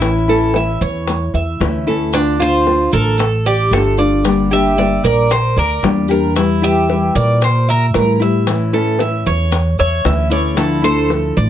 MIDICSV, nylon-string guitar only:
0, 0, Header, 1, 3, 480
1, 0, Start_track
1, 0, Key_signature, -1, "minor"
1, 0, Tempo, 527704
1, 17, Time_signature, 4, 2, 24, 8
1, 10456, End_track
2, 0, Start_track
2, 0, Title_t, "Nylon-string guitar"
2, 0, Program_c, 0, 24
2, 10, Note_on_c, 0, 52, 69
2, 20, Note_on_c, 0, 57, 61
2, 26, Note_on_c, 0, 61, 76
2, 32, Note_on_c, 0, 64, 74
2, 242, Note_off_c, 0, 64, 0
2, 245, Note_off_c, 0, 52, 0
2, 250, Note_off_c, 0, 57, 0
2, 253, Note_off_c, 0, 61, 0
2, 253, Note_on_c, 0, 64, 72
2, 265, Note_on_c, 0, 61, 62
2, 272, Note_on_c, 0, 57, 58
2, 487, Note_off_c, 0, 64, 0
2, 492, Note_off_c, 0, 57, 0
2, 493, Note_off_c, 0, 61, 0
2, 496, Note_on_c, 0, 52, 43
2, 503, Note_on_c, 0, 57, 50
2, 507, Note_on_c, 0, 61, 45
2, 513, Note_on_c, 0, 64, 48
2, 969, Note_off_c, 0, 52, 0
2, 973, Note_off_c, 0, 57, 0
2, 975, Note_off_c, 0, 61, 0
2, 977, Note_off_c, 0, 64, 0
2, 1453, Note_on_c, 0, 52, 59
2, 1463, Note_on_c, 0, 57, 63
2, 1469, Note_on_c, 0, 61, 62
2, 1474, Note_on_c, 0, 64, 61
2, 1688, Note_off_c, 0, 52, 0
2, 1688, Note_off_c, 0, 64, 0
2, 1693, Note_off_c, 0, 57, 0
2, 1696, Note_off_c, 0, 61, 0
2, 1699, Note_on_c, 0, 64, 71
2, 1710, Note_on_c, 0, 61, 71
2, 1719, Note_on_c, 0, 57, 58
2, 1931, Note_off_c, 0, 64, 0
2, 1935, Note_on_c, 0, 50, 64
2, 1936, Note_off_c, 0, 57, 0
2, 1937, Note_off_c, 0, 61, 0
2, 1947, Note_on_c, 0, 57, 68
2, 1955, Note_on_c, 0, 62, 70
2, 1958, Note_on_c, 0, 65, 76
2, 2166, Note_off_c, 0, 65, 0
2, 2170, Note_off_c, 0, 50, 0
2, 2176, Note_off_c, 0, 57, 0
2, 2176, Note_off_c, 0, 62, 0
2, 2177, Note_on_c, 0, 65, 68
2, 2187, Note_on_c, 0, 62, 67
2, 2194, Note_on_c, 0, 57, 57
2, 2411, Note_off_c, 0, 65, 0
2, 2416, Note_off_c, 0, 57, 0
2, 2416, Note_off_c, 0, 62, 0
2, 2420, Note_on_c, 0, 50, 47
2, 2427, Note_on_c, 0, 57, 49
2, 2435, Note_on_c, 0, 62, 51
2, 2437, Note_on_c, 0, 65, 55
2, 2885, Note_off_c, 0, 50, 0
2, 2893, Note_off_c, 0, 57, 0
2, 2895, Note_off_c, 0, 62, 0
2, 2898, Note_off_c, 0, 65, 0
2, 3383, Note_on_c, 0, 50, 57
2, 3389, Note_on_c, 0, 57, 63
2, 3399, Note_on_c, 0, 62, 64
2, 3407, Note_on_c, 0, 65, 62
2, 3607, Note_off_c, 0, 65, 0
2, 3615, Note_off_c, 0, 50, 0
2, 3618, Note_off_c, 0, 57, 0
2, 3618, Note_on_c, 0, 65, 75
2, 3619, Note_off_c, 0, 62, 0
2, 3630, Note_on_c, 0, 62, 79
2, 3638, Note_on_c, 0, 57, 58
2, 3853, Note_off_c, 0, 65, 0
2, 3859, Note_off_c, 0, 62, 0
2, 3859, Note_on_c, 0, 50, 67
2, 3863, Note_off_c, 0, 57, 0
2, 3863, Note_on_c, 0, 55, 72
2, 3870, Note_on_c, 0, 58, 71
2, 3876, Note_on_c, 0, 62, 71
2, 3881, Note_on_c, 0, 67, 69
2, 4087, Note_off_c, 0, 67, 0
2, 4094, Note_off_c, 0, 50, 0
2, 4094, Note_off_c, 0, 62, 0
2, 4095, Note_off_c, 0, 55, 0
2, 4098, Note_on_c, 0, 67, 62
2, 4099, Note_off_c, 0, 58, 0
2, 4105, Note_on_c, 0, 62, 63
2, 4114, Note_on_c, 0, 58, 64
2, 4118, Note_on_c, 0, 55, 55
2, 4324, Note_off_c, 0, 55, 0
2, 4331, Note_off_c, 0, 58, 0
2, 4333, Note_off_c, 0, 67, 0
2, 4334, Note_off_c, 0, 62, 0
2, 4335, Note_on_c, 0, 55, 44
2, 4342, Note_on_c, 0, 58, 51
2, 4345, Note_on_c, 0, 62, 48
2, 4354, Note_on_c, 0, 67, 48
2, 4812, Note_off_c, 0, 55, 0
2, 4815, Note_off_c, 0, 58, 0
2, 4817, Note_off_c, 0, 62, 0
2, 4821, Note_off_c, 0, 67, 0
2, 5298, Note_on_c, 0, 55, 65
2, 5308, Note_on_c, 0, 58, 54
2, 5314, Note_on_c, 0, 62, 63
2, 5318, Note_on_c, 0, 67, 67
2, 5526, Note_off_c, 0, 67, 0
2, 5533, Note_off_c, 0, 55, 0
2, 5536, Note_off_c, 0, 62, 0
2, 5537, Note_on_c, 0, 67, 74
2, 5538, Note_off_c, 0, 58, 0
2, 5547, Note_on_c, 0, 62, 71
2, 5549, Note_on_c, 0, 58, 59
2, 5558, Note_on_c, 0, 55, 64
2, 5773, Note_off_c, 0, 55, 0
2, 5773, Note_off_c, 0, 67, 0
2, 5777, Note_on_c, 0, 52, 69
2, 5778, Note_off_c, 0, 62, 0
2, 5779, Note_off_c, 0, 58, 0
2, 5786, Note_on_c, 0, 55, 68
2, 5801, Note_on_c, 0, 64, 74
2, 6009, Note_off_c, 0, 64, 0
2, 6013, Note_off_c, 0, 52, 0
2, 6018, Note_off_c, 0, 55, 0
2, 6020, Note_on_c, 0, 64, 71
2, 6041, Note_on_c, 0, 55, 61
2, 6254, Note_off_c, 0, 64, 0
2, 6258, Note_on_c, 0, 52, 41
2, 6262, Note_off_c, 0, 55, 0
2, 6273, Note_on_c, 0, 55, 47
2, 6280, Note_on_c, 0, 64, 53
2, 6731, Note_off_c, 0, 52, 0
2, 6736, Note_off_c, 0, 55, 0
2, 6739, Note_off_c, 0, 64, 0
2, 7219, Note_on_c, 0, 52, 61
2, 7234, Note_on_c, 0, 55, 69
2, 7239, Note_on_c, 0, 64, 75
2, 7445, Note_off_c, 0, 64, 0
2, 7453, Note_off_c, 0, 52, 0
2, 7456, Note_on_c, 0, 64, 72
2, 7461, Note_off_c, 0, 55, 0
2, 7479, Note_on_c, 0, 55, 63
2, 7692, Note_off_c, 0, 64, 0
2, 7702, Note_on_c, 0, 52, 73
2, 7703, Note_off_c, 0, 55, 0
2, 7708, Note_on_c, 0, 57, 74
2, 7712, Note_on_c, 0, 61, 69
2, 7721, Note_on_c, 0, 64, 71
2, 7930, Note_off_c, 0, 64, 0
2, 7934, Note_off_c, 0, 52, 0
2, 7937, Note_off_c, 0, 57, 0
2, 7940, Note_off_c, 0, 61, 0
2, 7941, Note_on_c, 0, 64, 68
2, 7949, Note_on_c, 0, 61, 70
2, 7957, Note_on_c, 0, 57, 57
2, 8173, Note_off_c, 0, 57, 0
2, 8174, Note_off_c, 0, 64, 0
2, 8174, Note_on_c, 0, 52, 42
2, 8178, Note_off_c, 0, 61, 0
2, 8184, Note_on_c, 0, 57, 48
2, 8191, Note_on_c, 0, 61, 50
2, 8198, Note_on_c, 0, 64, 50
2, 8640, Note_off_c, 0, 52, 0
2, 8642, Note_off_c, 0, 57, 0
2, 8650, Note_off_c, 0, 61, 0
2, 8654, Note_off_c, 0, 64, 0
2, 9138, Note_on_c, 0, 52, 62
2, 9144, Note_on_c, 0, 57, 62
2, 9149, Note_on_c, 0, 61, 63
2, 9155, Note_on_c, 0, 64, 65
2, 9357, Note_off_c, 0, 64, 0
2, 9368, Note_on_c, 0, 64, 73
2, 9371, Note_off_c, 0, 52, 0
2, 9373, Note_off_c, 0, 61, 0
2, 9374, Note_off_c, 0, 57, 0
2, 9384, Note_on_c, 0, 61, 61
2, 9387, Note_on_c, 0, 57, 57
2, 9600, Note_on_c, 0, 50, 55
2, 9603, Note_off_c, 0, 57, 0
2, 9604, Note_on_c, 0, 53, 66
2, 9605, Note_off_c, 0, 64, 0
2, 9614, Note_off_c, 0, 61, 0
2, 9614, Note_on_c, 0, 57, 62
2, 9621, Note_on_c, 0, 62, 76
2, 9624, Note_on_c, 0, 64, 72
2, 9831, Note_off_c, 0, 64, 0
2, 9839, Note_off_c, 0, 62, 0
2, 9842, Note_off_c, 0, 50, 0
2, 9842, Note_on_c, 0, 64, 69
2, 9844, Note_off_c, 0, 53, 0
2, 9844, Note_off_c, 0, 57, 0
2, 9850, Note_on_c, 0, 62, 72
2, 9855, Note_on_c, 0, 57, 66
2, 9862, Note_on_c, 0, 53, 52
2, 10078, Note_off_c, 0, 53, 0
2, 10082, Note_off_c, 0, 64, 0
2, 10086, Note_off_c, 0, 62, 0
2, 10089, Note_off_c, 0, 57, 0
2, 10089, Note_on_c, 0, 53, 53
2, 10099, Note_on_c, 0, 57, 50
2, 10106, Note_on_c, 0, 62, 48
2, 10109, Note_on_c, 0, 64, 48
2, 10456, Note_off_c, 0, 53, 0
2, 10456, Note_off_c, 0, 57, 0
2, 10456, Note_off_c, 0, 62, 0
2, 10456, Note_off_c, 0, 64, 0
2, 10456, End_track
3, 0, Start_track
3, 0, Title_t, "Muted nylon-string guitar strokes"
3, 984, Note_on_c, 9, 29, 63
3, 1075, Note_off_c, 9, 29, 0
3, 2896, Note_on_c, 9, 29, 54
3, 2987, Note_off_c, 9, 29, 0
3, 4824, Note_on_c, 9, 29, 60
3, 4915, Note_off_c, 9, 29, 0
3, 6742, Note_on_c, 9, 29, 60
3, 6832, Note_off_c, 9, 29, 0
3, 8651, Note_on_c, 9, 29, 60
3, 8742, Note_off_c, 9, 29, 0
3, 10456, End_track
0, 0, End_of_file